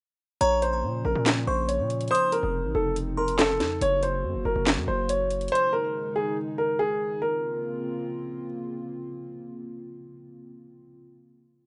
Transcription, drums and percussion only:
0.41 closed hi-hat medium
0.62 closed hi-hat medium
1.26 snare loud
1.26 clap loud
1.26 closed hi-hat medium
1.69 closed hi-hat medium
1.90 closed hi-hat medium
2.01 closed hi-hat soft
2.08 closed hi-hat medium
2.15 closed hi-hat medium
2.32 closed hi-hat medium
2.96 closed hi-hat medium
3.28 closed hi-hat medium
3.39 snare loud
3.39 clap loud
3.39 closed hi-hat medium
3.60 snare medium
3.60 closed hi-hat medium
3.81 closed hi-hat medium
4.03 closed hi-hat medium
4.67 snare loud
4.67 clap loud
4.67 closed hi-hat medium
5.09 closed hi-hat medium
5.30 closed hi-hat medium
5.41 closed hi-hat soft
5.48 closed hi-hat medium
5.55 closed hi-hat medium

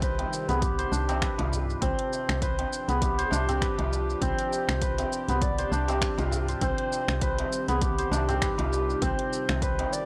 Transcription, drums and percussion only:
0.02 kick loud
0.02 closed hi-hat medium
0.02 shaker soft
0.18 closed hi-hat soft
0.18 darbuka ka medium
0.18 darbuka tek medium
0.33 shaker medium
0.49 closed hi-hat soft
0.49 darbuka dum medium
0.49 shaker soft
0.62 kick loud
0.62 closed hi-hat medium
0.62 shaker soft
0.79 closed hi-hat soft
0.79 shaker soft
0.93 shaker medium
1.09 closed hi-hat soft
1.09 darbuka tek medium
1.09 shaker soft
1.22 finger snap medium
1.22 kick medium
1.22 closed hi-hat medium
1.22 shaker soft
1.38 closed hi-hat soft
1.38 darbuka ka medium
1.38 darbuka tek medium
1.52 darbuka ka medium
1.52 darbuka dum medium
1.52 shaker medium
1.70 shaker soft
1.82 kick loud
1.82 closed hi-hat medium
1.82 shaker soft
1.99 closed hi-hat soft
2.13 darbuka tek soft
2.13 shaker medium
2.29 finger snap medium
2.29 darbuka ka medium
2.29 shaker soft
2.42 kick loud
2.42 closed hi-hat medium
2.42 shaker soft
2.58 closed hi-hat soft
2.58 darbuka ka medium
2.58 darbuka tek medium
2.73 shaker medium
2.89 closed hi-hat soft
2.89 shaker soft
3.02 kick loud
3.02 closed hi-hat medium
3.02 darbuka ka medium
3.02 shaker soft
3.19 closed hi-hat soft
3.19 shaker soft
3.31 darbuka tek medium
3.31 shaker medium
3.48 closed hi-hat soft
3.48 darbuka dum medium
3.48 shaker soft
3.62 finger snap medium
3.62 kick loud
3.62 closed hi-hat medium
3.62 shaker soft
3.78 closed hi-hat soft
3.78 darbuka tek medium
3.91 darbuka ka medium
3.91 shaker medium
4.10 shaker soft
4.22 kick loud
4.22 closed hi-hat medium
4.22 shaker soft
4.39 closed hi-hat soft
4.39 shaker soft
4.51 darbuka tek soft
4.51 shaker medium
4.67 finger snap medium
4.67 darbuka ka medium
4.67 shaker soft
4.82 kick loud
4.82 closed hi-hat medium
4.82 shaker soft
4.98 closed hi-hat soft
4.98 darbuka ka soft
4.98 darbuka tek medium
4.98 shaker soft
5.13 shaker medium
5.28 closed hi-hat soft
5.28 darbuka dum medium
5.28 shaker soft
5.42 kick loud
5.42 closed hi-hat medium
5.42 shaker soft
5.58 closed hi-hat soft
5.58 shaker soft
5.71 darbuka ka soft
5.71 shaker medium
5.88 closed hi-hat soft
5.88 darbuka tek medium
5.88 shaker soft
6.01 finger snap medium
6.01 kick loud
6.01 closed hi-hat medium
6.01 shaker soft
6.18 closed hi-hat soft
6.18 darbuka ka medium
6.18 darbuka tek medium
6.18 shaker soft
6.31 darbuka ka medium
6.31 darbuka dum medium
6.31 shaker medium
6.48 closed hi-hat soft
6.48 shaker soft
6.61 kick loud
6.61 closed hi-hat medium
6.61 shaker soft
6.78 closed hi-hat soft
6.91 darbuka tek soft
6.91 shaker medium
7.08 finger snap medium
7.08 darbuka ka medium
7.08 shaker soft
7.21 kick loud
7.21 closed hi-hat medium
7.21 shaker soft
7.38 closed hi-hat soft
7.38 darbuka ka medium
7.38 darbuka tek medium
7.52 shaker medium
7.68 closed hi-hat soft
7.68 shaker soft
7.82 kick loud
7.82 closed hi-hat medium
7.82 darbuka ka soft
7.82 shaker soft
7.99 closed hi-hat soft
7.99 shaker soft
8.12 darbuka tek medium
8.12 shaker medium
8.29 closed hi-hat soft
8.29 darbuka dum loud
8.29 shaker soft
8.42 finger snap medium
8.42 kick loud
8.42 closed hi-hat medium
8.42 shaker soft
8.58 closed hi-hat soft
8.58 darbuka tek medium
8.72 darbuka ka medium
8.72 shaker medium
8.90 shaker soft
9.02 kick loud
9.02 closed hi-hat medium
9.02 shaker soft
9.19 closed hi-hat soft
9.33 shaker medium
9.49 finger snap medium
9.49 darbuka ka medium
9.49 shaker soft
9.62 kick loud
9.62 closed hi-hat medium
9.62 shaker soft
9.79 closed hi-hat soft
9.79 darbuka ka medium
9.79 darbuka tek medium
9.93 shaker medium

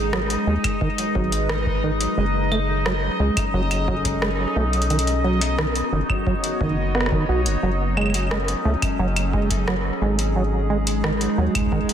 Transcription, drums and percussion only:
0.13 cross-stick loud
0.30 closed hi-hat soft
0.64 kick loud
0.64 closed hi-hat medium
0.64 claves medium
0.81 kick loud
0.98 closed hi-hat medium
1.15 kick loud
1.32 closed hi-hat medium
1.49 cross-stick loud
1.66 kick loud
2.01 closed hi-hat medium
2.52 claves soft
2.86 cross-stick loud
3.37 kick loud
3.37 closed hi-hat medium
3.37 claves medium
3.71 closed hi-hat medium
3.71 claves soft
3.88 kick loud
4.05 kick medium
4.05 closed hi-hat medium
4.22 cross-stick loud
4.73 closed hi-hat soft
4.82 closed hi-hat soft
4.90 closed hi-hat soft
4.99 closed hi-hat medium
5.07 closed hi-hat soft
5.41 closed hi-hat medium
5.58 cross-stick loud
5.76 closed hi-hat soft
6.10 kick loud
6.10 claves medium
6.27 kick loud
6.44 closed hi-hat medium
6.61 kick loud
6.95 cross-stick medium
7.01 cross-stick medium
7.06 cross-stick medium
7.12 kick loud
7.46 closed hi-hat medium
7.97 claves soft
8.01 claves soft
8.06 claves soft
8.10 claves soft
8.14 closed hi-hat medium
8.14 claves soft
8.18 claves soft
8.23 claves soft
8.27 claves soft
8.31 cross-stick loud
8.48 closed hi-hat soft
8.82 kick loud
8.82 closed hi-hat medium
8.82 claves medium
9.16 closed hi-hat soft
9.16 claves soft
9.33 kick loud
9.51 kick medium
9.51 closed hi-hat medium
9.68 cross-stick loud
10.19 closed hi-hat medium
10.87 closed hi-hat medium
11.04 cross-stick loud
11.21 closed hi-hat soft
11.55 kick medium
11.55 closed hi-hat medium
11.55 claves medium
11.61 kick medium
11.66 kick medium
11.72 kick loud
11.78 kick soft
11.83 kick soft
11.89 closed hi-hat soft

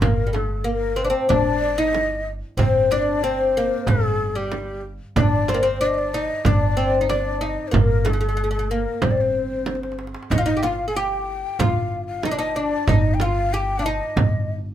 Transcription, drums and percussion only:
0.02 frame drum medium
0.02 darbuka dum medium
0.18 darbuka ka soft
0.35 darbuka tek medium
0.35 frame drum soft
0.51 darbuka ka soft
1.30 darbuka dum medium
1.30 frame drum medium
1.46 darbuka ka soft
1.62 darbuka ka soft
1.93 darbuka tek medium
1.93 frame drum medium
2.58 darbuka dum medium
2.58 frame drum medium
2.75 darbuka ka soft
2.91 darbuka tek medium
2.91 frame drum medium
3.07 darbuka ka soft
3.87 darbuka dum medium
3.87 frame drum medium
4.04 darbuka ka soft
4.20 darbuka ka soft
4.52 darbuka tek medium
4.52 frame drum medium
5.16 darbuka dum medium
5.16 frame drum medium
5.33 darbuka ka soft
5.48 darbuka tek medium
5.48 frame drum medium
6.45 frame drum medium
6.45 darbuka dum medium
6.62 darbuka ka soft
7.10 darbuka tek medium
7.10 frame drum medium
7.73 darbuka dum medium
7.73 frame drum medium
8.05 darbuka tek medium
8.05 frame drum medium
8.22 darbuka ka soft
8.38 darbuka ka soft
9.02 frame drum medium
9.02 darbuka dum medium
9.19 darbuka ka soft
9.35 darbuka ka soft
9.66 darbuka tek soft
9.66 frame drum medium
9.75 darbuka ka medium
9.83 darbuka tek medium
9.92 darbuka ka medium
9.99 darbuka tek medium
10.07 darbuka ka medium
10.14 darbuka tek medium
10.23 darbuka ka medium
10.31 darbuka dum medium
10.31 frame drum medium
10.47 darbuka ka soft
10.63 darbuka tek medium
10.63 frame drum medium
11.59 darbuka dum medium
11.59 frame drum medium
11.76 darbuka ka soft
11.92 darbuka ka soft
12.23 darbuka tek medium
12.23 frame drum medium
12.87 frame drum medium
12.87 darbuka dum medium
13.04 darbuka ka soft
13.20 frame drum medium
13.37 darbuka ka soft
14.16 darbuka dum medium
14.16 frame drum medium
14.33 darbuka ka soft
14.48 darbuka ka soft

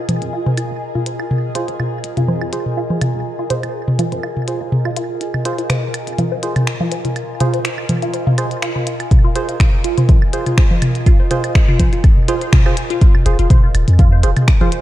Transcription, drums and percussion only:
0.09 closed hi-hat medium
0.09 high tom soft
0.09 low conga medium
0.22 closed hi-hat soft
0.46 high tom medium
0.58 closed hi-hat medium
0.58 claves medium
0.95 high tom soft
1.06 closed hi-hat medium
1.20 claves medium
1.31 high tom medium
1.55 closed hi-hat medium
1.68 closed hi-hat soft
1.80 high tom soft
1.80 claves medium
2.04 closed hi-hat medium
2.17 closed hi-hat soft
2.17 high tom medium
2.28 low conga medium
2.41 claves medium
2.53 closed hi-hat medium
2.66 high tom soft
2.90 low conga medium
3.01 closed hi-hat medium
3.01 high tom medium
3.01 claves medium
3.50 closed hi-hat medium
3.50 high tom soft
3.63 closed hi-hat soft
3.63 claves medium
3.88 high tom medium
3.99 closed hi-hat medium
3.99 low conga medium
4.12 closed hi-hat soft
4.23 claves medium
4.37 high tom soft
4.48 closed hi-hat medium
4.72 high tom medium
4.85 claves medium
4.97 closed hi-hat medium
5.21 closed hi-hat medium
5.34 high tom soft
5.34 claves medium
5.45 closed hi-hat medium
5.58 closed hi-hat soft
5.70 finger snap loud
5.70 closed hi-hat medium
5.70 high tom medium
5.94 closed hi-hat medium
5.94 claves medium
6.07 closed hi-hat soft
6.18 closed hi-hat medium
6.18 high tom soft
6.18 low conga medium
6.43 closed hi-hat medium
6.56 closed hi-hat soft
6.56 high tom medium
6.56 claves medium
6.67 finger snap medium
6.67 closed hi-hat medium
6.81 low conga medium
6.92 closed hi-hat medium
7.05 closed hi-hat soft
7.05 high tom soft
7.16 closed hi-hat soft
7.16 claves medium
7.40 closed hi-hat medium
7.40 high tom medium
7.54 closed hi-hat soft
7.65 finger snap loud
7.65 closed hi-hat medium
7.78 claves medium
7.89 closed hi-hat medium
7.89 high tom soft
7.89 low conga medium
8.02 closed hi-hat soft
8.14 closed hi-hat soft
8.27 high tom medium
8.38 closed hi-hat medium
8.38 claves medium
8.51 closed hi-hat soft
8.62 finger snap medium
8.62 closed hi-hat soft
8.76 high tom soft
8.87 closed hi-hat loud
9.00 closed hi-hat soft
9.00 claves medium
9.11 kick loud
9.11 closed hi-hat medium
9.11 high tom medium
9.36 closed hi-hat medium
9.49 closed hi-hat soft
9.60 finger snap loud
9.60 kick loud
9.60 closed hi-hat medium
9.60 high tom soft
9.60 claves medium
9.84 closed hi-hat loud
9.98 closed hi-hat soft
9.98 high tom medium
10.09 kick loud
10.09 closed hi-hat medium
10.09 low conga medium
10.22 claves medium
10.33 closed hi-hat loud
10.46 closed hi-hat soft
10.46 high tom soft
10.58 finger snap medium
10.58 kick loud
10.58 closed hi-hat soft
10.71 low conga medium
10.82 closed hi-hat loud
10.82 high tom medium
10.82 claves medium
10.95 closed hi-hat soft
11.06 kick loud
11.06 closed hi-hat soft
11.31 closed hi-hat medium
11.31 high tom soft
11.44 closed hi-hat soft
11.44 claves medium
11.55 finger snap medium
11.55 kick loud
11.55 closed hi-hat medium
11.68 high tom medium
11.79 kick medium
11.79 closed hi-hat loud
11.79 low conga medium
11.93 closed hi-hat soft
12.04 kick loud
12.04 closed hi-hat medium
12.04 claves medium
12.17 high tom soft
12.28 closed hi-hat loud
12.41 closed hi-hat soft
12.53 finger snap medium
12.53 kick loud
12.53 closed hi-hat medium
12.53 high tom medium
12.66 claves medium
12.77 closed hi-hat loud
12.90 closed hi-hat soft
13.01 kick loud
13.01 closed hi-hat medium
13.15 high tom soft
13.15 claves medium
13.26 closed hi-hat medium
13.39 closed hi-hat soft
13.50 kick loud
13.50 closed hi-hat medium
13.50 high tom medium
13.75 closed hi-hat loud
13.75 claves medium
13.88 closed hi-hat soft
13.99 kick loud
13.99 closed hi-hat medium
13.99 high tom soft
13.99 low conga medium
14.23 closed hi-hat medium
14.37 closed hi-hat soft
14.37 high tom medium
14.37 claves medium
14.48 finger snap loud
14.48 kick loud
14.48 closed hi-hat medium
14.61 low conga medium
14.72 closed hi-hat medium

